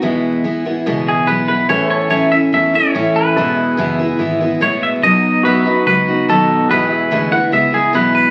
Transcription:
0.02 E2 B2 E3 G#3 B3 E4
0.44 E3 G#3 B3 E4
0.65 E3 G#3 B3 E4
0.86 C#2 E2 B2 E3 G#3 B3 E4
1.08 G#4
1.27 B1 E3 G#3 B3 E4 B4
1.48 E3 G#3 B3 E4 B4
1.69 A1 A2 E3 A3 C#4 E4 G#4 B4 C#5 E5
1.90 A4 C#5
1.96 C#5
2.10 A2 E3 A3 C#4 E4 C#5
2.32 A3 C#4 E4 E5
2.52 E2 E3 A3 C#4 E4 E5
2.73 A3 C#4 E4 C#5
2.94 A2 E3 A3 C#4 E4
3.16 B4
3.36 E1 E2 B2 E3 G#3 B3 E4 A4 B4 E5
3.56 G#4
3.77 F#1 E2 B2 E3 G#3 B3 E4
3.99 E3 G#3 B3 E4
4.19 G#1 E3 G#3 B3 E4
4.40 E3 G#3 B3 E4
4.60 A1 E2 B2 E3 G#3 B3 E4 C#5
4.83 E5
5.03 B1 B2 F#3 B3 D#4 F#4 D#5
5.43 B2 F#3 B3 D#4 F#4 B4 E5
5.65 B3 D#4 F#4 D#5
5.86 C#2 F#3 B3 D#4 F#4 B4
6.08 B3 D#4 F#4
6.28 D#2 B2 F#3 B3 D#4 F#4 A4
6.69 E2 B2 E3 G#3 B3 E4 F#4 B4 D#5
6.91 G#4 E5
7.11 D2 E2 B2 E3 G#3 B3 E4
7.31 E3 G#3 B3 E4 F#5
7.52 C#2 E3 G#3 B3 E4 E5
7.73 E3 G#3 B3 E4 G#4
7.93 B1 E2 B2 E3 G#3 B3 E4 B4
8.15 B4

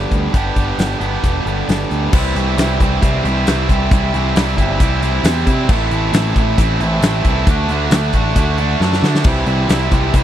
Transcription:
Already playing: G2 D3 G3 B3 D4 G4
0.11 D2, kick, closed hi-hat
0.32 G1 G2 D3 G3 B3 D4 G4, kick, closed hi-hat
0.56 G1, kick, closed hi-hat
0.78 G1, snare, closed hi-hat, tambourine
1.00 G1 G2 D3 G3 B3 D4 G4, closed hi-hat
1.23 E1, kick, closed hi-hat
1.46 G1, closed hi-hat
1.69 G1, snare, closed hi-hat, tambourine
1.91 D2, closed hi-hat
2.12 C2 C3 E3 G3 C4 E4, kick, crash
2.35 C2 G3 C4 E4, closed hi-hat
2.57 C2 C3 E3 G3 C4 E4, snare, closed hi-hat, tambourine
2.80 C2 G3 C4 E4, kick, closed hi-hat
3.01 C2 E3 G3 C4 E4, kick, closed hi-hat
3.24 C2 C3 E3 G3 C4 E4, closed hi-hat
3.46 C2 E3 G3 C4 E4, snare, closed hi-hat, tambourine
3.69 C2 G3 C4 E4, kick, closed hi-hat
3.90 C2 C3 E3 G3 C4 E4, kick, closed hi-hat
4.13 C2 G3 C4 E4, closed hi-hat
4.35 C2 C3 E3 G3 C4 E4, snare, closed hi-hat, tambourine
4.57 G1 G3 C4 E4, kick, closed hi-hat
4.80 C2 E3 G3 C4 E4, kick, closed hi-hat
5.02 C3 E3 G3 C4 E4, closed hi-hat
5.24 E2 E3 G3 C4 E4, snare, closed hi-hat, tambourine
5.46 C3 G3 C4 E4, kick, closed hi-hat
5.69 A1 A2 E3 A3 C4, kick, crash
5.73 E4
5.91 A1 A3 C4 E4, closed hi-hat
6.13 A1 A2 E3 A3 C4 E4, snare, closed hi-hat, tambourine
6.35 A1 A3 C4 E4, kick, closed hi-hat
6.58 A1 E3 A3 C4 E4, kick, closed hi-hat
6.79 A1 A3 C4 E4, closed hi-hat
6.84 A2 E3
7.01 A1 E3 A3, snare, closed hi-hat, tambourine
7.06 C4 E4
7.24 C2 C4 E4, kick, closed hi-hat
7.29 A3
7.47 D2 D3 A3 D4 F#4, kick, closed hi-hat
7.68 D2 D4 F#4, closed hi-hat
7.73 A3
7.90 D2 D3 A3 D4, snare, closed hi-hat, tambourine
7.95 F#4
8.13 A1 D4 F#4, kick, closed hi-hat
8.18 A3
8.35 D2 D3 A3 D4, kick, closed hi-hat
8.40 F#4
8.58 A3 D4 F#4, closed hi-hat
8.62 D3
8.80 F#2 D3 A3 D4 F#4, snare
8.93 snare
9.02 D3 D4 F#4, snare
9.07 A3
9.15 snare
9.24 C2 C3 E3 G3 C4, kick, crash
9.28 E4
9.46 C2 C4 E4, closed hi-hat
9.51 G3
9.69 C2 C3 E3 G3 C4 E4, snare, closed hi-hat, tambourine
9.91 C2 G3 C4 E4, kick, closed hi-hat
10.13 C2 E3 G3 C4 E4, kick, closed hi-hat

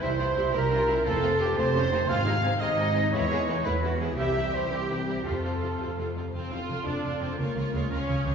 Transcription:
0.00 C2 C3 G3 E4 C5 G5
0.18 C3 G3 E4 F4
0.36 C3 G3 E4
0.53 C2 C3 G3 E4 G4 A#4
0.71 C3 G3 C#4 E4 F4
0.87 C3 G3 E4
1.05 F1 C3 A3 C4 F4 A4 A5
1.22 C3 A3 C4 F4
1.39 C3 A3 C4 F4 G4
1.56 F1 C3 A3 C4 F4 C5 A5
1.74 C3 A3 C4 C#4 F4
1.91 C3 A3 C4 D#4 F4
2.08 G#1 C3 G#3 C4 D#4 F4 F5 G#5
2.26 C3 G#3 C4 D#4 G#5
2.42 C3 G#3 C4 D#4 G#5
2.60 G#1 C3 G#3 C4 D#4 D#5 G#5
2.76 C3 G#3 C4 D#4 G#5
2.94 C3 G#3 C4 D#4 G#5
3.12 E2 E3 G#3 B3 E4 C#5 G#5
3.30 E3 G#3 B3 E4 G#4 G#5
3.48 E3 G#3 B3 D#4 E4 G#5
3.64 E2 E3 G#3 B3 E4 B4 G#5
3.83 E3 G#3 B3 E4 F#4 G#5
4.00 E3 G#3 B3 E4 G#4 G#5
4.18 C2 E3 G3 C4 E4 G4 E5 G5
4.37 E3 G3 C4 E4
4.54 E3 G3 C4 E4 C5
4.71 C2 E3 G3 C4 E4 G4 G5
4.89 E3 G3 C4 E4
5.07 E3 G3 C4 E4 G4
5.25 F2 C3 F3 C4 F4 A4 F5
5.44 C3 F3 C4 F4
5.62 C3 F3 C4 F4
5.79 F2 C3 F3 C4 F4
5.97 C3 F3 C4 F4
6.16 C3 F3 C4 F4
6.34 F1 F2 F3 C4 F4 A4 F5
6.51 F1 F2 F4 A4 F5
6.69 F1 F2 F4 A4 F5
6.86 F1 F2 D4 F4 A4 F5
7.04 F1 F2 F4 A4 F5
7.21 F1 F2 C4 F4 A4 F5
7.39 C#2 C#3 A#3 C#4 F4 C#5 F5
7.56 C#2 C#3 F4 C#5 F5
7.73 C#2 C#3 G#3 F4 C#5 F5
7.90 C#2 C#3 C#4 F4 A#4 C#5 F5
8.08 C#2 C#3 F4 G#4 C#5 F5
8.25 C#2 C#3 F4 G4 C#5 F5

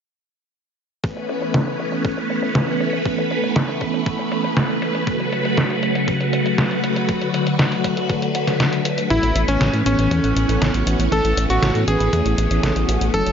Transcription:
1.04 E3 A3 B3 C#4 B4, kick, closed hi-hat
1.17 closed hi-hat
1.29 closed hi-hat
1.42 closed hi-hat
1.54 kick, snare, closed hi-hat
1.67 closed hi-hat
1.79 closed hi-hat
1.92 closed hi-hat
2.05 kick, closed hi-hat
2.17 closed hi-hat
2.30 closed hi-hat
2.43 closed hi-hat
2.55 kick, snare, closed hi-hat
2.68 closed hi-hat
2.80 closed hi-hat
2.93 closed hi-hat
3.06 kick, closed hi-hat
3.18 closed hi-hat
3.31 closed hi-hat
3.44 closed hi-hat
3.56 kick, snare, closed hi-hat
3.69 closed hi-hat
3.81 kick, closed hi-hat
3.94 closed hi-hat
4.06 kick, closed hi-hat
4.19 closed hi-hat
4.32 closed hi-hat
4.44 closed hi-hat
4.57 kick, snare, closed hi-hat
4.69 closed hi-hat
4.82 closed hi-hat
4.95 closed hi-hat
5.07 C#3 F#3 F#4, kick, closed hi-hat
5.20 closed hi-hat
5.32 closed hi-hat
5.45 closed hi-hat
5.57 kick, snare, closed hi-hat
5.70 closed hi-hat
5.83 closed hi-hat
5.95 closed hi-hat
6.08 kick, closed hi-hat
6.21 closed hi-hat
6.33 closed hi-hat
6.46 closed hi-hat
6.58 kick, snare, closed hi-hat
6.71 closed hi-hat
6.84 closed hi-hat
6.96 closed hi-hat
7.09 D3, kick, closed hi-hat
7.21 closed hi-hat
7.34 closed hi-hat
7.47 closed hi-hat
7.59 kick, snare, closed hi-hat
7.72 closed hi-hat
7.84 kick, closed hi-hat
7.97 closed hi-hat
8.10 kick, closed hi-hat
8.22 closed hi-hat
8.35 closed hi-hat
8.47 snare, closed hi-hat
8.60 kick, snare, closed hi-hat
8.73 closed hi-hat
8.85 closed hi-hat
8.98 closed hi-hat
9.10 A1 E3 A3 B3 C#4 E4 A4, kick, closed hi-hat
9.23 A1, closed hi-hat
9.36 A1, closed hi-hat
9.48 A1 E3 B3 C#4 A4, closed hi-hat
9.61 A1, kick, snare, closed hi-hat
9.73 A2, closed hi-hat
9.86 A1 E3 B3 C#4 B4, closed hi-hat
9.99 A1, closed hi-hat
10.11 E2 E3 B3 C#4 A4, kick, closed hi-hat
10.24 A1, closed hi-hat
10.36 A1, closed hi-hat
10.49 A1 E3 B3 C#4 A4, closed hi-hat
10.62 A1, kick, snare, closed hi-hat
10.74 A1 E3 B3 C#4 F#4, closed hi-hat
10.87 A1, closed hi-hat
10.99 A1, closed hi-hat
11.12 A1 E3 B3 C#4 A4, kick, closed hi-hat
11.25 A1, closed hi-hat
11.37 A1, closed hi-hat
11.50 A1 E3 B3 C#4 F#4 A4, closed hi-hat
11.62 A1, kick, snare, closed hi-hat
11.75 A2, closed hi-hat
11.88 A1 E3 B3 C#4 G#4 B4, kick, closed hi-hat
12.00 A1, closed hi-hat
12.13 E2 E3 A3 B3 C#4, kick, closed hi-hat
12.26 A1, closed hi-hat
12.38 A1, closed hi-hat
12.51 A1 E3 B3 C#4 A4, closed hi-hat
12.63 A1, kick, snare, closed hi-hat
12.76 A1 E3 B3 C#4 F#4, closed hi-hat
12.89 A1, closed hi-hat
13.01 A1, closed hi-hat
13.14 F#1 C#3 F#3 A3 C#4 F#4 A4 C#5, kick, closed hi-hat
13.26 F#1, closed hi-hat

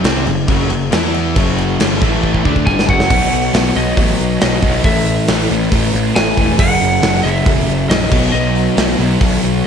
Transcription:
Already playing: F#3 C#4 G#4
0.04 C2 C3 G3 C4, snare, crash
0.26 F#1 F#2 C#3, crash
0.48 F#1 F#2 C#3 F#3, kick, crash
0.70 F#1 F#2 C#3, crash
0.92 E2 E3 B3 E4 F#4, snare, crash
1.14 crash
1.35 F#1 F#2 C#3 F#3 C#4 G#4, kick, crash
1.58 crash
1.80 G1 G2 D3 G3, snare, crash
2.00 A1 A2 E3 A3 E4 B4, kick, crash
2.23 kick
2.34 kick
2.43 D2 D3 F#3 A3 C#4 D4 G#4, kick
2.56 kick
2.66 G1 G2 D3 G3 G#5, kick
2.79 snare
2.88 F#1 F#2 C#3 F#3 F#5, kick
3.00 snare
3.10 B1 B2 F#3 B3 F#4 C#5, kick, crash
3.32 B1, open hi-hat
3.53 B1 B2 F#3 B3, snare, open hi-hat
3.75 B1 B2 F#3 B3 D#5, open hi-hat
3.97 A1 B2 F#3 B3, kick, open hi-hat
4.19 B1, open hi-hat
4.41 B1 B2 F#3 B3 D#5, snare, open hi-hat
4.62 B1 B2 F#3 B3, kick, open hi-hat
4.84 A1 A2 E3 A3 E4 B4 E5, kick, open hi-hat
5.06 open hi-hat
5.28 A1 A2 E3 A3, snare, open hi-hat
5.50 A1 A2 E3 A3, open hi-hat
5.71 A1 A2 E3 A3, kick, open hi-hat
5.93 A1, open hi-hat
6.15 A1 A2 E3 A3 G#5, snare, open hi-hat
6.37 E1 A2 E3 A3, kick, open hi-hat
6.57 F#1 F#2 C#3 F#3 C#4 G#4 F#5, kick, crash
6.81 F#1, open hi-hat
7.02 F#1 F#2 C#3 F#3, snare, open hi-hat
7.23 F#1 F#2 C#3 F#3 E5, open hi-hat
7.46 E1 F#2 C#3 F#3, kick, open hi-hat
7.68 F#1, open hi-hat
7.89 A#1 F#2 C#3 F#3 D#5, snare, open hi-hat
8.11 B1 B2 F#3 B3 F#4 C#5, kick, crash
8.32 B1 B2 F#3 B3 D#5
8.55 open hi-hat
8.76 B1 B2 F#3 B3, snare, open hi-hat
8.98 B1 B2 F#3 B3, open hi-hat
9.20 B1 B2 F#3 B3, kick, open hi-hat
9.43 B1, open hi-hat

